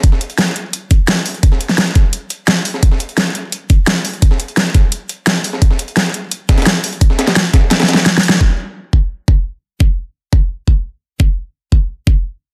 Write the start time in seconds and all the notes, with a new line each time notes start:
0.03 kick, closed hi-hat
0.12 snare
0.21 closed hi-hat
0.30 closed hi-hat
0.38 snare, closed hi-hat
0.56 closed hi-hat
0.73 closed hi-hat
0.91 kick, closed hi-hat
1.08 snare, closed hi-hat
1.26 closed hi-hat, open hi-hat
1.34 closed hi-hat
1.43 kick, closed hi-hat
1.52 snare
1.61 closed hi-hat
1.69 snare, closed hi-hat
1.78 snare, closed hi-hat
1.95 kick, snare, closed hi-hat
2.13 closed hi-hat
2.30 closed hi-hat
2.48 snare, closed hi-hat
2.65 closed hi-hat, open hi-hat
2.74 snare
2.83 kick, closed hi-hat
2.91 snare
3.00 closed hi-hat
3.09 closed hi-hat
3.18 snare, closed hi-hat
3.35 closed hi-hat
3.52 closed hi-hat
3.70 kick, closed hi-hat
3.87 snare, closed hi-hat
4.05 closed hi-hat, open hi-hat
4.13 closed hi-hat
4.22 kick, closed hi-hat
4.31 snare
4.40 closed hi-hat
4.48 closed hi-hat
4.57 snare, closed hi-hat
4.74 kick, snare, closed hi-hat
4.92 closed hi-hat
5.09 closed hi-hat
5.27 snare, closed hi-hat
5.44 closed hi-hat, open hi-hat
5.53 snare
5.62 kick, closed hi-hat
5.71 snare
5.79 closed hi-hat
5.88 closed hi-hat
5.97 snare, closed hi-hat
6.14 closed hi-hat
6.31 closed hi-hat
6.49 kick, snare, closed hi-hat
6.58 snare, closed hi-hat
6.62 snare, closed hi-hat
6.66 snare, closed hi-hat
6.84 closed hi-hat, open hi-hat
6.93 closed hi-hat
7.01 kick, closed hi-hat
7.10 snare
7.19 snare, closed hi-hat
7.27 snare, closed hi-hat
7.36 snare, closed hi-hat
7.54 kick, snare, closed hi-hat
7.71 snare, closed hi-hat
7.80 snare, closed hi-hat
7.83 snare
7.88 snare, closed hi-hat
7.94 snare
7.97 snare, closed hi-hat
8.06 snare, closed hi-hat
8.18 snare
8.23 closed hi-hat, open hi-hat
8.29 snare
8.32 snare
8.41 kick
8.93 kick
9.28 kick
9.80 kick
10.33 kick
10.68 kick
11.20 kick
11.72 kick
12.07 kick